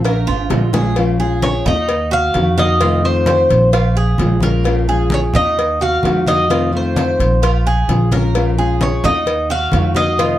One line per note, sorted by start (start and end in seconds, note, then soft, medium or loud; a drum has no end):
0.00 0.24 A#1 loud
0.04 0.27 A#4 medium
0.04 muted nylon-string guitar stroke medium
0.04 cowbell loud
0.04 high conga soft
0.04 high timbale medium
0.04 low agogo loud
0.27 0.49 G#1 medium
0.27 0.72 F4 medium
0.27 high conga soft
0.27 high timbale medium
0.27 low agogo medium
0.50 1.59 A#1 medium
0.50 cowbell medium
0.50 high bongo medium
0.50 high conga medium
0.50 low timbale medium
0.73 0.96 G#3 medium
0.73 0.96 C#4 medium
0.73 0.95 F4 medium
0.73 0.96 G#4 medium
0.73 cowbell medium
0.73 low bongo medium
0.73 high conga medium
0.73 low timbale medium
0.73 low agogo medium
0.96 1.19 F3 medium
0.96 1.19 G#3 medium
0.96 1.20 C#4 medium
0.96 1.19 F4 medium
0.96 cowbell loud
0.96 high conga soft
0.96 low agogo loud
1.20 1.88 G#3 medium
1.20 1.89 C#4 medium
1.20 1.88 F4 medium
1.20 1.64 G#4 medium
1.20 high conga soft
1.42 1.67 C#5 loud
1.42 cowbell medium
1.42 high conga loud
1.42 low agogo medium
1.65 2.31 D#2 loud
1.65 2.10 D#4 medium
1.65 2.13 D#5 loud
1.65 high conga soft
1.65 low conga medium
1.65 low agogo loud
1.89 muted nylon-string guitar stroke medium
1.89 cowbell loud
1.89 high conga soft
2.11 2.56 F#4 medium
2.11 2.55 F5 loud
2.11 high conga soft
2.11 low agogo medium
2.34 3.44 F2 loud
2.34 2.57 D#3 medium
2.34 2.58 A#3 medium
2.34 2.58 D#4 medium
2.34 2.57 F#4 medium
2.34 cowbell medium
2.34 high conga medium
2.34 low agogo loud
2.58 2.81 A#3 medium
2.58 2.80 D#4 medium
2.58 2.80 F#4 medium
2.58 3.06 D#5 loud
2.58 2.80 F5 medium
2.58 cowbell medium
2.58 high conga medium
2.80 3.03 C3 medium
2.80 3.03 D#3 medium
2.80 3.03 A3 medium
2.80 3.03 C4 medium
2.80 3.26 F4 medium
2.80 3.03 F4 medium
2.80 cowbell loud
2.80 high conga soft
2.80 low agogo medium
3.04 3.73 D#3 medium
3.04 3.73 A3 medium
3.04 3.73 C4 medium
3.04 3.72 F4 medium
3.04 3.70 C5 medium
3.04 high conga soft
3.04 low agogo medium
3.26 3.72 C5 medium
3.26 cowbell medium
3.26 high conga loud
3.26 low agogo loud
3.49 4.15 A#1 loud
3.49 cowbell medium
3.49 high conga soft
3.72 3.95 F4 medium
3.72 muted nylon-string guitar stroke medium
3.72 cowbell loud
3.72 high conga soft
3.72 low agogo loud
3.95 4.41 G#4 medium
3.95 high conga soft
3.95 low agogo medium
4.18 5.28 A#1 loud
4.18 4.42 F3 medium
4.18 4.42 G#3 medium
4.18 4.42 C#4 medium
4.18 4.42 F4 medium
4.18 cowbell medium
4.18 high conga medium
4.18 low timbale medium
4.41 4.65 G#3 medium
4.41 4.65 C#4 medium
4.41 4.65 F4 medium
4.41 4.87 A#4 medium
4.41 cowbell medium
4.41 high conga medium
4.41 low agogo medium
4.64 4.88 F3 medium
4.64 4.88 G#3 medium
4.64 4.88 C#4 medium
4.64 4.88 F4 medium
4.64 cowbell loud
4.64 high conga soft
4.64 low agogo loud
4.87 5.58 G#3 soft
4.87 5.57 C#4 medium
4.87 5.57 F4 medium
4.87 5.33 G#4 medium
4.87 high conga soft
5.10 5.20 C#5 medium
5.10 cowbell medium
5.10 high conga loud
5.10 low agogo medium
5.34 6.00 D#2 loud
5.34 5.79 D#4 medium
5.34 5.82 D#5 loud
5.34 high conga soft
5.34 low conga medium
5.34 low agogo loud
5.57 muted nylon-string guitar stroke medium
5.57 cowbell loud
5.57 high conga soft
5.80 6.26 F#4 medium
5.80 6.24 F5 loud
5.80 high conga soft
5.80 low agogo medium
6.03 7.13 F2 medium
6.03 6.26 D#3 medium
6.03 6.26 A#3 medium
6.03 6.26 D#4 medium
6.03 6.27 F#4 medium
6.03 cowbell medium
6.03 high conga medium
6.03 low timbale medium
6.03 low agogo loud
6.26 6.50 A#3 medium
6.26 6.50 D#4 medium
6.26 6.49 F#4 medium
6.26 6.70 D#5 loud
6.26 6.50 F5 medium
6.26 cowbell medium
6.26 high conga medium
6.49 6.71 C3 medium
6.49 6.72 D#3 medium
6.49 6.72 A3 medium
6.49 6.72 C4 medium
6.49 6.95 F4 medium
6.49 6.73 F4 medium
6.49 cowbell loud
6.49 high conga soft
6.49 low agogo medium
6.72 7.43 D#3 medium
6.72 7.42 A3 medium
6.72 7.42 C4 medium
6.72 7.42 F4 medium
6.72 high conga soft
6.72 low agogo medium
6.77 7.40 C5 medium
6.96 7.41 C5 medium
6.96 cowbell medium
6.96 high conga loud
6.96 low agogo loud
7.19 7.85 A#1 loud
7.19 cowbell medium
7.19 high conga soft
7.42 7.65 F4 medium
7.42 muted nylon-string guitar stroke medium
7.42 cowbell loud
7.42 high conga soft
7.42 low agogo loud
7.66 8.11 G#4 medium
7.66 high conga soft
7.66 low agogo medium
7.89 8.97 A#1 medium
7.89 8.11 F3 medium
7.89 8.11 G#3 medium
7.89 8.11 C#4 medium
7.89 8.11 F4 medium
7.89 cowbell medium
7.89 high conga medium
8.12 8.35 G#3 medium
8.12 8.34 C#4 medium
8.12 8.34 F4 medium
8.12 8.57 A#4 medium
8.12 cowbell medium
8.12 high conga medium
8.12 low agogo medium
8.35 8.57 F3 medium
8.35 8.57 G#3 medium
8.35 8.58 C#4 medium
8.35 8.57 F4 medium
8.35 cowbell loud
8.35 high conga soft
8.35 low agogo loud
8.57 9.27 G#3 medium
8.57 9.26 C#4 medium
8.57 9.26 F4 medium
8.57 9.03 G#4 medium
8.57 high conga soft
8.81 9.05 C#5 medium
8.81 cowbell medium
8.81 high conga loud
8.81 low agogo medium
9.04 9.69 D#2 loud
9.04 9.49 D#4 medium
9.04 9.47 D#5 loud
9.04 high conga soft
9.04 low conga medium
9.04 low agogo loud
9.26 muted nylon-string guitar stroke medium
9.26 cowbell loud
9.26 high conga soft
9.49 9.95 F#4 medium
9.49 9.96 F5 loud
9.49 high conga soft
9.49 low agogo medium
9.72 10.39 F2 medium
9.72 9.95 D#3 medium
9.72 9.95 A#3 medium
9.72 9.95 D#4 medium
9.72 9.94 F#4 medium
9.72 cowbell medium
9.72 high conga medium
9.72 low timbale medium
9.72 low agogo loud
9.95 10.18 A#3 medium
9.95 10.18 D#4 medium
9.95 10.18 F#4 medium
9.95 10.39 D#5 loud
9.95 10.18 F5 medium
9.95 cowbell medium
9.95 high conga medium
10.18 10.39 C3 medium
10.18 10.39 D#3 medium
10.18 10.39 A3 medium
10.18 10.39 C4 medium
10.18 10.39 F4 medium
10.18 cowbell loud
10.18 high conga soft
10.18 low agogo medium